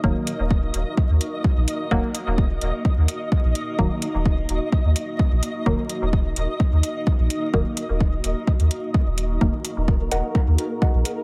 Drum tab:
HH |--x---x---x---x-|--x---x---x---x-|--x---x---x---x-|--x---x---x---x-|
BD |o---o---o---o---|o---o---o---o---|o---o---o---o---|o---o---o---o---|

HH |--x---x--xx---x-|--x---x---x---x-|
BD |o---o---o---o---|o---o---o---o---|